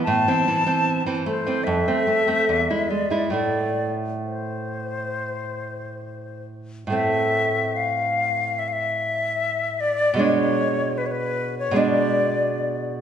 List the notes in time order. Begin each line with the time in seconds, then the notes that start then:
0.03 A5
0.07 A2
0.28 E3 C4
0.48 E3
0.66 E3 C4
1.06 E3 C4
1.26 A3 C5
1.47 E3 C4
1.64 F2 E5
1.88 A3 C4
2.07 A3
2.27 A3 C4
2.49 E2
2.70 G#3 E4
2.89 G#3 D5
3.10 G#3 E4
3.30 A2 A3 E4 D5
4.25 C5
6.87 A2 A3
6.92 C4 E5
7.76 F5
8.59 E5
8.68 F5
8.73 E5
9.80 D5
10.14 B2 G#3
10.19 D4 C#5
10.98 B4
11.06 C#5
11.11 B4
11.59 C#5
11.71 B2 G#3
11.76 D4 D5